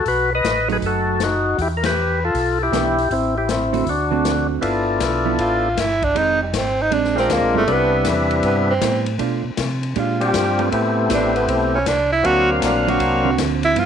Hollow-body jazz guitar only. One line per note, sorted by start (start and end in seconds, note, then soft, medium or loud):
0.68 1.17 F#3 medium
0.68 1.17 A3 medium
0.68 1.18 D#4 medium
2.72 2.95 E3 medium
2.72 2.95 B3 medium
2.72 2.96 D4 medium
2.72 2.96 G4 medium
3.73 3.85 D3 medium
3.73 3.85 A3 medium
3.73 3.85 C4 medium
3.73 3.86 F#4 medium
4.11 4.60 D3 medium
4.11 4.60 A3 medium
4.11 4.60 C4 medium
4.11 4.61 F#4 medium
5.25 5.37 F3 soft
5.25 5.37 B3 medium
5.25 5.38 E4 medium
6.15 6.38 D#3 medium
6.15 6.38 G#3 medium
6.15 6.38 C4 medium
6.91 7.14 G#3 medium
6.91 7.14 C4 medium
6.91 7.14 D4 medium
7.55 7.66 G3 medium
7.55 7.67 B3 medium
7.55 7.67 E4 medium
8.81 9.04 G3 medium
8.81 9.05 B3 medium
8.81 9.05 E4 medium
9.19 9.42 A3 medium
9.19 9.42 D4 medium
9.19 9.43 F4 medium
9.96 10.19 G#3 medium
9.96 10.19 D4 medium
9.96 10.19 G4 medium
10.59 10.70 A3 soft
10.59 10.71 C4 soft
10.59 10.71 G4 medium
10.59 10.71 B4 medium
11.10 11.33 A3 medium
11.10 11.33 C4 medium
11.10 11.33 G4 medium
11.10 11.33 B4 medium
12.87 12.99 D3 medium
12.87 12.99 A#3 medium
12.87 13.00 C4 medium
12.87 13.00 F#4 medium
13.25 13.73 D3 medium
13.25 13.74 A#3 medium
13.25 13.74 C4 medium
13.25 13.74 F#4 medium
13.75 13.86 F3 medium
13.75 13.86 B3 medium
13.75 13.86 E4 medium